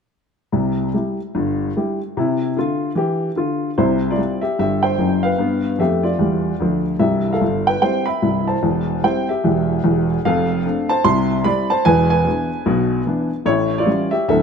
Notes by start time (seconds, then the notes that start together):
0.52 C2 C3
0.94 G3 E4 G4
1.35 G1 G2
1.77 G3 E4 G4
2.17 C3 E4
2.57 D3 F4
2.95 E3 G4
3.36 D3 F4
3.78 C2 C3 E4 C5
4.11 F4 D5
4.18 G3 C4 E4
4.41 G4 E5
4.59 G1 G2 G4 E5
4.83 C5 G5
4.98 F#1 F#2
5.23 B4 F5
5.39 G2 B3
5.79 F2 A3 G4 E5
6.03 F4 D5
6.19 E2 G3
6.60 D2 F3
6.99 C1 C2 G4 E5
7.33 A4 F5
7.41 G1
7.67 B4 G5
7.82 G3 C4 E4 C5 G5
8.06 E5 B5
8.22 C1 C2
8.48 C5 A5
8.63 E1 E2
9.04 G3 C4 E4 C5 G5
9.29 G4 E5
9.44 E1 E2
9.84 E1 E2
10.25 F1 F2 A4 F5
10.66 A3 C4 D4
10.89 C5 A5
11.04 C2 C3 E5 C6
11.44 G3 C4 E4 D5 B5
11.70 C5 A5
11.85 E1 E2 B4 G#5
12.10 B4 G#5
12.26 E3 B3 D4
12.66 B1 B2
13.06 E3 B3 D4
13.46 A1 A2 E4 C#5
13.78 F4 D5
13.86 E3 G3 C#4
14.11 G4 E5
14.28 D1 D2 D3 F#3 C4 A4 E5